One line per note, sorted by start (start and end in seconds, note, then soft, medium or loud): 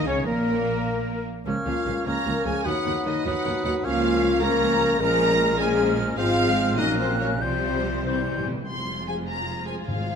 0.06 0.26 C#2 medium
0.06 0.26 C#3 medium
0.06 0.27 C#3 medium
0.06 0.14 C#4 medium
0.06 0.26 C#4 medium
0.06 0.16 C#4 medium
0.06 0.26 C#4 medium
0.06 0.26 C#5 medium
0.26 1.26 A#1 medium
0.26 1.26 A#2 medium
0.26 1.24 A#3 medium
0.26 1.26 A#3 medium
0.26 1.24 A#3 medium
0.26 1.24 A#4 medium
1.46 1.54 C#2 medium
1.46 1.54 F3 medium
1.46 1.54 A#3 medium
1.46 2.02 A#3 medium
1.46 1.54 C#4 medium
1.46 2.02 C#4 medium
1.46 2.02 C#5 medium
1.46 2.02 F6 medium
1.66 1.74 C#2 medium
1.66 1.75 C#2 medium
1.66 1.74 F3 medium
1.66 1.74 A#3 medium
1.66 1.74 C#4 medium
1.66 2.03 F4 medium
1.66 2.03 F5 medium
1.86 1.94 C#2 medium
1.86 1.95 C#2 medium
1.86 1.94 F3 medium
1.86 1.94 A#3 medium
1.86 1.94 C#4 medium
2.05 2.14 C#2 medium
2.05 2.14 F3 medium
2.05 2.14 A#3 medium
2.05 2.67 A#3 medium
2.05 2.13 C#4 medium
2.05 2.68 C#4 medium
2.05 2.46 A#4 medium
2.05 2.67 C#5 medium
2.05 2.46 A#5 medium
2.05 2.64 F6 medium
2.25 2.34 C#2 medium
2.25 2.33 F3 medium
2.25 2.33 A#3 medium
2.25 2.33 C#4 medium
2.45 2.53 C#2 medium
2.45 2.54 C#2 medium
2.45 2.53 F3 medium
2.45 2.53 A#3 medium
2.45 2.53 C#4 medium
2.45 2.65 G#4 medium
2.45 2.65 G#5 medium
2.64 2.73 D#2 medium
2.64 2.74 D#3 medium
2.64 2.73 F#3 medium
2.64 3.26 F#3 medium
2.64 2.72 B3 medium
2.64 3.26 D#4 medium
2.64 3.05 F#4 medium
2.64 3.26 B4 medium
2.64 3.06 F#5 loud
2.64 3.24 D#6 medium
2.85 2.94 D#2 medium
2.85 2.94 D#3 medium
2.85 2.94 F#3 medium
2.85 2.93 B3 medium
3.05 3.14 D#2 medium
3.05 3.14 D#3 medium
3.05 3.14 F#3 medium
3.05 3.13 B3 medium
3.05 3.25 D#4 medium
3.05 3.26 D#5 medium
3.25 3.33 D#2 medium
3.25 3.34 D#2 medium
3.25 3.33 D#3 medium
3.25 3.33 F#3 medium
3.25 3.85 F#3 medium
3.25 3.33 B3 medium
3.25 3.86 D#4 medium
3.25 3.65 F#4 medium
3.25 3.86 B4 medium
3.25 3.63 F#5 medium
3.25 3.85 D#6 medium
3.45 3.53 D#2 medium
3.45 3.54 D#2 medium
3.45 3.53 D#3 medium
3.45 3.53 F#3 medium
3.45 3.52 B3 medium
3.64 3.73 D#2 medium
3.64 3.72 D#3 medium
3.64 3.72 F#3 medium
3.64 3.72 B3 medium
3.64 3.85 F#4 medium
3.64 3.72 F#5 medium
3.83 4.97 C#2 medium
3.83 4.38 F3 medium
3.83 4.42 A#3 medium
3.83 4.38 A#3 medium
3.83 4.38 C#4 medium
3.83 4.43 C#4 medium
3.83 4.43 F4 medium
3.83 4.42 C#5 medium
3.83 4.41 F5 loud
3.83 4.42 F6 medium
4.42 4.99 F3 medium
4.42 4.99 A#3 medium
4.42 5.02 A#3 medium
4.42 4.99 C#4 medium
4.42 5.00 C#4 medium
4.42 4.99 A#4 loud
4.42 5.02 C#5 medium
4.42 5.00 A#5 loud
4.42 5.00 F6 medium
5.00 6.18 A#1 medium
5.00 6.18 A#2 medium
5.00 5.57 F3 medium
5.00 5.59 G#3 medium
5.00 5.58 G#3 medium
5.00 5.57 C#4 medium
5.00 5.58 C#4 medium
5.00 5.58 A#4 loud
5.00 5.59 A#4 medium
5.00 5.58 A#5 loud
5.00 5.59 F6 medium
5.58 6.16 F3 medium
5.58 6.16 G#3 medium
5.58 6.17 G#3 medium
5.58 6.16 C#4 medium
5.58 6.17 C#4 medium
5.58 5.97 G#4 medium
5.58 6.17 A#4 medium
5.58 5.98 G#5 loud
5.58 6.17 F6 medium
6.17 6.77 G#1 medium
6.17 6.77 G#2 medium
6.17 6.77 F3 medium
6.17 6.77 G#3 medium
6.17 6.79 G#3 medium
6.17 6.80 C4 medium
6.17 6.78 C4 medium
6.17 6.74 F4 loud
6.17 6.80 C5 medium
6.17 6.74 F5 loud
6.17 6.80 F6 medium
6.77 7.41 A#1 medium
6.77 7.41 A#2 medium
6.77 7.41 F#3 medium
6.77 7.42 A#3 medium
6.77 7.43 C#4 medium
6.77 6.98 D#4 medium
6.77 7.41 A#4 medium
6.77 6.98 D#5 loud
6.77 7.43 F#6 medium
6.98 7.19 C4 medium
6.98 7.19 C5 medium
7.20 7.41 C#4 medium
7.20 7.28 C#5 medium
7.40 8.48 C2 medium
7.40 8.48 C3 medium
7.40 8.04 F3 medium
7.40 8.05 G3 medium
7.40 8.04 G3 medium
7.40 8.46 C4 medium
7.40 8.06 F4 medium
7.40 8.45 C5 medium
7.40 8.04 C5 medium
7.40 8.05 G6 medium
8.05 8.13 C3 soft
8.05 8.48 E3 medium
8.05 8.47 G3 medium
8.05 8.25 C4 medium
8.05 8.48 E4 medium
8.05 8.47 C5 medium
8.05 8.48 G6 medium
8.14 8.21 C3 soft
8.22 8.29 C3 soft
8.26 8.47 G#3 medium
8.30 8.38 C3 medium
8.39 8.45 C3 medium
8.46 8.53 C3 medium
8.46 8.68 G3 medium
8.54 8.61 C3 medium
8.68 9.84 F1 medium
8.68 9.84 F2 medium
8.68 10.15 G#3 medium
8.68 10.15 F4 medium
8.68 10.15 G#4 medium
8.68 10.15 C5 medium
8.68 9.05 C6 medium
9.08 9.15 F3 medium
9.08 9.16 G#4 medium
9.08 9.16 G#5 medium
9.28 9.67 A#5 medium
9.67 9.75 F3 medium
9.67 9.75 G#4 medium
9.67 9.75 G#5 medium
9.86 10.15 G#1 medium
9.86 10.15 G#2 medium
9.86 10.15 F5 medium